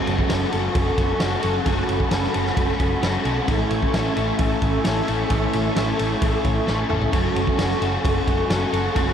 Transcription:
Already playing: clean electric guitar F#2 C#3 F#3 A3 C#4, overdriven electric guitar F#3 C#4 F#4 A4, analog synth pad A4 F#5 G#5 C#6
0.07 picked electric bass F#1, ride
0.19 kick
0.29 picked electric bass F#1, overdriven electric guitar F#3 C#4 F#4 A4, snare, ride
0.52 picked electric bass F#1, overdriven electric guitar C#4 F#4 A4, ride
0.75 picked electric bass F#1, kick, ride
0.98 picked electric bass F#1, kick, ride
1.20 picked electric bass F#1, overdriven electric guitar F#3 C#4 F#4 A4, snare, ride
1.43 picked electric bass F#1, overdriven electric guitar C#4 F#4 A4, ride
1.66 picked electric bass F#1, clean electric guitar F#2 C#3 F#3 A3 C#4, overdriven electric guitar F#3 C#4 F#4 A4, analog synth pad B5, kick, ride
1.89 picked electric bass F#1, ride
2.00 kick
2.11 picked electric bass F#1, overdriven electric guitar F#3 C#4 F#4 A4, snare, ride
2.23 snare
2.34 picked electric bass F#1, overdriven electric guitar C#4 F#4 A4, ride
2.46 snare
2.57 picked electric bass F#1, kick, ride
2.80 picked electric bass F#1, kick, ride
3.02 picked electric bass F#1, overdriven electric guitar F#3 C#4 F#4 A4, snare, ride
3.24 picked electric bass B1, overdriven electric guitar C#4 F#4 A4, ride
3.46 picked electric bass A1, clean electric guitar A2 E3, overdriven electric guitar A3 C#4 E4 A4, analog synth pad E5 C#6, kick, ride
3.50 clean electric guitar C#4 E4
3.70 picked electric bass A1, ride
3.82 kick
3.93 picked electric bass A1, overdriven electric guitar A3 C#4 E4 A4, snare, ride
4.15 picked electric bass A1, overdriven electric guitar C#4 E4 A4, ride
4.39 picked electric bass A1, kick, ride
4.62 picked electric bass A1, kick, ride
4.84 picked electric bass A1, overdriven electric guitar A3 C#4 E4 A4, snare, ride
5.06 picked electric bass A1, overdriven electric guitar C#4 E4 A4, ride
5.29 picked electric bass A1, clean electric guitar A2 E3, overdriven electric guitar A3 C#4 E4 A4, kick, ride
5.33 clean electric guitar C#4 E4
5.53 picked electric bass A1, ride
5.74 picked electric bass A1, overdriven electric guitar A3 C#4 E4 A4, snare, ride
5.97 picked electric bass A1, overdriven electric guitar C#4 E4 A4, ride
6.22 picked electric bass A1, kick, ride
6.44 picked electric bass A1, kick, ride
6.67 picked electric bass A1, overdriven electric guitar A3 C#4 E4 A4, snare
6.89 picked electric bass A1, overdriven electric guitar C#4 E4 A4, mid tom
7.01 floor tom
7.12 picked electric bass F#1, clean electric guitar F#2 C#3 F#3 A3 C#4, overdriven electric guitar F#3 C#4 F#4 A4, analog synth pad F#5, kick, ride
7.36 picked electric bass F#1, ride
7.47 kick
7.57 picked electric bass F#1, overdriven electric guitar F#3 C#4 F#4 A4, snare, ride
7.71 snare
7.80 picked electric bass F#1, overdriven electric guitar C#4 F#4 A4, ride
8.05 picked electric bass F#1, kick, ride
8.28 picked electric bass F#1, kick, ride
8.49 picked electric bass F#1, overdriven electric guitar F#3 C#4 F#4 A4, snare, ride
8.72 picked electric bass F#1, overdriven electric guitar C#4 F#4 A4, ride
8.94 picked electric bass F#1, clean electric guitar F#2 C#3 F#3 A3 C#4, overdriven electric guitar F#3 C#4 F#4 A4, kick, ride

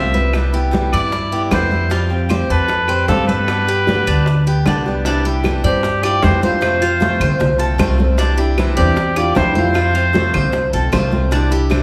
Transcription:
Already playing: upright bass C2, steel-string acoustic guitar F3 G3 C4 F4, trumpet E5, cuban tres F5
0.14 steel-string acoustic guitar G3 C4 F4, cuban tres B4, high conga
0.33 steel-string acoustic guitar C3 E3 G3 B3 E4, high bongo, high conga, claves
0.53 steel-string acoustic guitar G3 B3 E4, cuban tres G4, high bongo, high conga
0.71 steel-string acoustic guitar C3 E3 G3 B3 E4, high bongo, high conga
0.93 upright bass G2, cuban tres E4, trumpet D5, high bongo, high conga, claves
1.12 muted steel-string acoustic guitar stroke, high bongo, high conga
1.32 steel-string acoustic guitar G3 B3 E4, cuban tres G4, high conga
1.46 trumpet D5
1.51 upright bass F2, steel-string acoustic guitar C3 E3 G3 B3 E4, cuban tres E4, trumpet C5, high bongo, low bongo, high conga, claves
1.71 steel-string acoustic guitar G3 B3 E4, high bongo, high conga
1.90 steel-string acoustic guitar F3 G3 C4 G4, cuban tres F4, high bongo, high conga
2.09 steel-string acoustic guitar G3 C4 G4, high conga
2.29 steel-string acoustic guitar F3 G3 C4 G4, cuban tres C5, high bongo, high conga, claves
2.50 upright bass F2, cuban tres A4, trumpet B4, high conga
2.68 muted steel-string acoustic guitar stroke, high bongo, high conga
2.88 steel-string acoustic guitar G3 C4 G4, cuban tres C5, high conga, claves
3.08 upright bass G2, steel-string acoustic guitar F3 G3 C4 G4, trumpet A4, cuban tres F5, high bongo, low bongo, high conga
3.28 steel-string acoustic guitar G3 C4 G4, cuban tres A4, trumpet B4, high conga
3.48 steel-string acoustic guitar D3 G3 B3 G4, high bongo, high conga, claves
3.67 steel-string acoustic guitar G3 B3 G4, cuban tres G4, high bongo, high conga
3.87 steel-string acoustic guitar D3 G3 B3 G4, high bongo, high conga
4.07 upright bass D2, cuban tres D4, high bongo, high conga, claves
4.26 muted steel-string acoustic guitar stroke, high bongo, high conga
4.46 steel-string acoustic guitar G3 B3 G4, cuban tres G4, high conga
4.66 upright bass C2, steel-string acoustic guitar D3 G3 B3 G4, cuban tres D4, high bongo, low bongo, high conga, claves
4.86 steel-string acoustic guitar G3 B3 G4, high bongo
5.05 steel-string acoustic guitar C3 E3 G3 D4 E4, cuban tres D4, high bongo, high conga
5.25 steel-string acoustic guitar G3 D4 E4, cuban tres G4, high conga
5.44 steel-string acoustic guitar C3 E3 G3 D4 E4, high bongo, high conga, claves
5.64 upright bass G2, nylon-string guitar C4, trumpet G4, cuban tres D5, high conga
5.83 muted steel-string acoustic guitar stroke, high bongo, high conga
6.03 steel-string acoustic guitar G3 D4 E4, nylon-string guitar F4, cuban tres G4, trumpet D5, high conga, claves
6.23 upright bass F2, steel-string acoustic guitar C3 E3 G3 D4 E4, nylon-string guitar E4, trumpet C5, high bongo, low bongo, high conga
6.42 steel-string acoustic guitar G3 D4 E4, nylon-string guitar F4, cuban tres C5, trumpet C5, high conga
6.61 steel-string acoustic guitar C3 F3 A3 C4 F4, high bongo, high conga, claves
6.81 steel-string acoustic guitar A3 C4 F4, cuban tres F4, high conga
7.00 steel-string acoustic guitar C3 F3 A3 C4 F4, high bongo, high conga
7.20 upright bass C2, cuban tres C5, high bongo, high conga, low conga, claves
7.40 muted steel-string acoustic guitar stroke, high bongo, high conga, low conga
7.58 steel-string acoustic guitar A3 C4 F4, cuban tres A4, high bongo, high conga
7.78 upright bass C2, steel-string acoustic guitar C3 F3 A3 C4 F4, cuban tres C5, high bongo, low bongo, high conga, claves
7.98 steel-string acoustic guitar A3 C4 F4, high bongo, high conga
8.18 steel-string acoustic guitar C3 E3 G3 D4 E4, cuban tres D4, high bongo, high conga
8.38 steel-string acoustic guitar G3 D4 E4, cuban tres G4, high conga
8.58 steel-string acoustic guitar C3 E3 G3 D4 E4, high bongo, high conga, claves
8.77 upright bass E2, nylon-string guitar C4, trumpet G4, cuban tres D5, high conga
8.96 muted steel-string acoustic guitar stroke, high bongo, high conga
9.16 steel-string acoustic guitar G3 D4 E4, nylon-string guitar F4, cuban tres G4, trumpet D5, high conga, claves
9.35 upright bass F2, steel-string acoustic guitar C3 E3 G3 D4 E4, nylon-string guitar E4, trumpet C5, high bongo, low bongo, high conga
9.55 steel-string acoustic guitar G3 D4 E4, nylon-string guitar F4, cuban tres C5, trumpet C5, high conga
9.74 steel-string acoustic guitar C3 F3 A3 C4 F4, high bongo, high conga, claves
9.94 steel-string acoustic guitar A3 C4 F4, cuban tres F4, high conga
10.13 steel-string acoustic guitar C3 F3 A3 C4 F4, high bongo, high conga
10.33 upright bass C2, cuban tres C5, high bongo, high conga, low conga, claves
10.52 muted steel-string acoustic guitar stroke, high bongo, high conga
10.73 upright bass B1, steel-string acoustic guitar A3 C4 F4, cuban tres A4, high bongo, high conga
10.92 upright bass C2, steel-string acoustic guitar C3 F3 A3 C4 F4, cuban tres C5, high bongo, low bongo, high conga, claves
11.11 steel-string acoustic guitar A3 C4 F4, high bongo, high conga
11.31 steel-string acoustic guitar C3 E3 G3 D4 E4, cuban tres D4, high bongo, high conga
11.51 steel-string acoustic guitar G3 D4 E4, cuban tres G4, high conga
11.70 steel-string acoustic guitar C3 E3 G3 D4 E4, high bongo, high conga, claves

